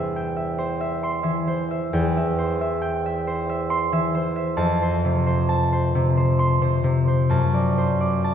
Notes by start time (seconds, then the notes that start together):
Already playing: E2 C5 E5 G5 C6
0.16 G5
0.36 E5
0.58 C5
0.81 E5
1.03 C6
1.23 E3 E5
1.47 C5
1.71 E5
1.93 E2 G5
2.17 E5
2.39 C5
2.61 E5
2.82 G5
3.06 E5
3.27 C5
3.49 E5
3.70 C6
3.92 E3 E5
4.15 C5
4.36 E5
4.57 F2 A5
4.82 C5
5.05 C3
5.26 C5
5.49 A5
5.72 C5
5.95 C3
6.17 C5
6.39 C6
6.62 C3 C5
6.84 C3
7.07 C5
7.30 F#2 A5
7.54 D5
7.78 C5
8.01 D5
8.24 A5